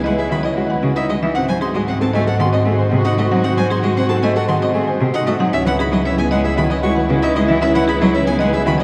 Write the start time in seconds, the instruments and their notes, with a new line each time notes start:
Already playing: double bass section C#2, string section E4 B4
0.04 cello G#3, grand piano B4, marimba D#5, violin F#5
0.15 clarinet E4, grand piano G#4, violin E5
0.30 cello D#3, grand piano F#4, marimba E5, violin B5
0.42 grand piano C#4, clarinet E4, marimba D#5, violin D#5
0.56 cello G#3, grand piano F#4
0.69 clarinet E4, grand piano B4, marimba F#5
0.83 cello C#3, grand piano F#4
0.96 grand piano D#4, clarinet E4, marimba D#5, violin E5
1.09 cello G#3, grand piano E4, violin D#5
1.22 cello E3, grand piano D#4, marimba E5
1.35 double bass section G#2, grand piano C4, string section F#4 C5, clarinet F#4, marimba F#5, violin F#5
1.48 cello F#3, grand piano C5, violin G#5
1.61 grand piano D#4, clarinet F#4, marimba G#4, violin C6
1.74 cello G#3, grand piano F#4, violin D#5
1.88 grand piano C4, clarinet F#4, marimba C5, violin F#5
2.01 cello C4, grand piano A4, violin A5
2.14 cello A3, clarinet F#4, grand piano C5, marimba D#5, violin G#5
2.27 grand piano A4, violin F#5
2.39 cello D#3, grand piano G#4, marimba F#5, violin C6
2.45 clarinet F#4
2.53 grand piano C4, marimba D#5, violin D#5
2.65 cello A3, grand piano G#4
2.71 clarinet F#4
2.79 grand piano C5, marimba G#5
2.92 cello C3, grand piano G#4
2.98 clarinet F#4
3.05 grand piano D#4, marimba D#5, violin F#5
3.18 cello A3, grand piano F#4, violin D#5
3.25 clarinet F#4
3.31 cello F#3, grand piano D#4, marimba F#5
3.44 grand piano C4, violin F#5, marimba F#5
3.51 clarinet F#4
3.57 cello F#3, grand piano C5, violin G#5
3.70 grand piano D#4, marimba G#4, violin C6
3.78 clarinet F#4
3.83 cello G#3, grand piano F#4, violin D#5
3.97 grand piano C4, marimba C5, violin F#5
4.06 cello C4, clarinet F#4, violin A5
4.10 grand piano A4
4.22 cello A3, grand piano C5, marimba D#5, violin G#5
4.31 clarinet F#4
4.36 grand piano A4, violin F#5
4.48 cello D#3, grand piano G#4, marimba F#5, violin C6
4.59 grand piano C4, clarinet F#4, violin D#5, marimba D#5
4.74 cello A3, grand piano G#4
4.87 clarinet F#4, grand piano C5, marimba G#5
5.00 cello C3, grand piano G#4
5.14 grand piano D#4, clarinet F#4, marimba D#5, violin F#5
5.26 cello A3, grand piano F#4, violin D#5
5.39 cello F#3, grand piano D#4, marimba F#5
5.53 double bass section C#2, grand piano C#4, string section E4 B4, clarinet E4, violin E5, marimba E5
5.66 cello E3, grand piano B4, violin F#5
5.79 grand piano D#4, clarinet E4, marimba G#4, violin B5
5.92 cello F#3, grand piano E4, violin D#5
6.05 grand piano C#4, marimba C#5, violin E5
6.09 clarinet E4
6.18 cello B3, grand piano G#4, violin G#5
6.31 cello G#3, grand piano B4, marimba D#5, violin F#5
6.36 clarinet E4
6.44 grand piano G#4, violin E5
6.57 cello D#3, grand piano F#4, marimba E5, violin B5
6.62 clarinet E4
6.70 grand piano C#4, marimba D#5, violin D#5
6.83 cello G#3, grand piano F#4, violin C#6
6.89 clarinet E4
6.96 grand piano B4, marimba F#5
7.10 cello C#3, grand piano F#4
7.15 clarinet E4
7.22 grand piano D#4, marimba D#5, violin E5
7.35 cello G#3, grand piano E4, violin D#5
7.42 clarinet E4
7.48 cello E3, grand piano D#4, marimba E5
7.61 grand piano C#4, marimba E5, violin E5
7.68 clarinet E4
7.75 cello E3, grand piano B4, violin F#5
7.88 grand piano D#4, marimba G#4, violin B5
7.96 clarinet E4
8.01 cello F#3, grand piano E4, violin D#5
8.13 grand piano C#4, marimba C#5, violin E5
8.22 clarinet E4
8.27 cello B3, grand piano G#4, violin G#5
8.39 cello G#3, grand piano B4, marimba D#5, violin F#5
8.49 clarinet E4, grand piano G#4
8.53 violin E5
8.65 cello D#3, grand piano F#4, marimba E5, violin B5
8.77 grand piano C#4, clarinet E4, marimba D#5, violin D#5